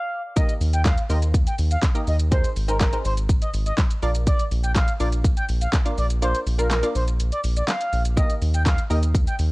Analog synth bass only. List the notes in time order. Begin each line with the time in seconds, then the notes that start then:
0.61 D#2
1.10 D#2
1.59 D#2
2.07 D#2
2.56 G#1
3.05 G#1
3.54 G#1
4.03 A#1
4.51 A#1
5.00 A#1
5.49 A#1
5.98 A#1
6.47 A#1
6.95 A#1
7.44 A#1
7.93 A#1
8.42 D#2
8.90 D#2
9.39 D#2